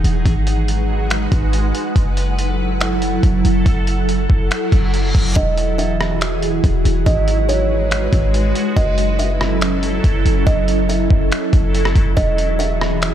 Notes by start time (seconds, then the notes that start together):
Already playing: E3 F#3 D#4 G#4 F#5
0.04 E1, closed hi-hat
0.25 G#1 G#3 D#4 F#4 B4 F#5, kick, closed hi-hat
0.47 closed hi-hat
0.68 closed hi-hat
1.10 finger snap, closed hi-hat
1.32 G#1, kick, closed hi-hat
1.53 closed hi-hat
1.75 closed hi-hat
1.96 F#1 F#3 E4 A4, kick, closed hi-hat
2.17 closed hi-hat
2.39 closed hi-hat
2.81 finger snap, closed hi-hat
3.02 closed hi-hat
3.23 F#1, kick, closed hi-hat
3.45 F#1, closed hi-hat
3.66 F#1, kick, closed hi-hat
3.87 closed hi-hat
4.09 closed hi-hat
4.30 F#1, kick
4.51 finger snap, closed hi-hat, reverse cymbal
4.72 F#1, kick, closed hi-hat
4.94 closed hi-hat
5.15 F#1, kick, closed hi-hat
5.36 E1 E3 F#3 E4 F#4 G#4 D#5, kick, closed hi-hat
5.57 closed hi-hat
5.78 E5, closed hi-hat
6.01 cross-stick
6.21 finger snap, closed hi-hat
6.42 closed hi-hat
6.64 E1, kick, closed hi-hat
6.85 E1, closed hi-hat
7.06 G#1 G#3 D#4 F#4 B4 D#5, kick, closed hi-hat
7.28 closed hi-hat
7.49 C#5, closed hi-hat
7.91 finger snap, closed hi-hat
8.13 G#1, kick, closed hi-hat
8.34 closed hi-hat
8.55 closed hi-hat
8.76 F#1 F#3 C#4 E4 A4 D#5, kick, closed hi-hat
8.98 closed hi-hat
9.19 E5, closed hi-hat
9.41 cross-stick
9.61 finger snap, closed hi-hat
9.83 closed hi-hat
10.04 F#1, kick, closed hi-hat
10.25 F#1, closed hi-hat
10.47 F#1 D#5, kick, closed hi-hat
10.68 closed hi-hat
10.89 E5, closed hi-hat
11.10 F#1, kick
11.32 finger snap, closed hi-hat
11.53 F#1, kick, closed hi-hat
11.75 closed hi-hat
11.85 cross-stick
11.95 F#1, kick, closed hi-hat
12.17 E1 E3 F#3 E4 F#4 G#4 D#5, kick, closed hi-hat
12.38 closed hi-hat
12.59 E5, closed hi-hat
12.81 cross-stick
13.02 finger snap, closed hi-hat